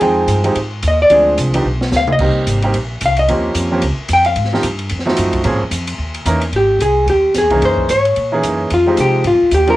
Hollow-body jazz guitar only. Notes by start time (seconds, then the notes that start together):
Already playing: G#4
0.88 D#5
1.02 D5
1.97 F5
2.12 D#5
3.06 F5
3.19 D#5
4.13 G5
4.26 F5
6.56 G4
6.82 G#4
7.10 G4
7.38 G#4
7.65 C5
7.90 C#5
8.74 F4
9.01 G4
9.27 F4
9.54 G4
9.70 A#4